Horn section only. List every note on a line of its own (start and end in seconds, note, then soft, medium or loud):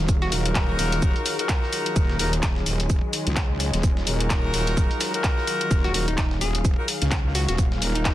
0.32 1.36 D#4 loud
0.32 1.36 F4 loud
0.32 1.36 F#4 loud
0.32 1.36 A#4 loud
1.39 2.17 D#4 loud
1.39 2.17 F4 loud
1.39 2.17 F#4 loud
1.39 2.17 A#4 loud
2.19 2.31 D#4 medium
2.19 2.31 F4 medium
2.19 2.31 F#4 medium
2.19 2.31 A#4 loud
4.07 5.11 D#4 loud
4.07 5.11 F4 loud
4.07 5.11 F#4 loud
4.07 5.11 A#4 loud
5.14 5.92 D#4 loud
5.14 5.92 F4 loud
5.14 5.92 F#4 loud
5.14 5.92 A#4 loud
5.94 6.06 D#4 medium
5.94 6.06 F4 medium
5.94 6.06 F#4 medium
5.94 6.06 A#4 loud
6.78 6.87 D#4 medium
6.78 6.87 F4 medium
6.78 6.87 F#4 medium
6.78 6.87 A#4 loud
7.82 8.14 D#4 loud
7.82 8.14 F4 loud
7.82 8.14 F#4 loud
7.82 8.14 A#4 loud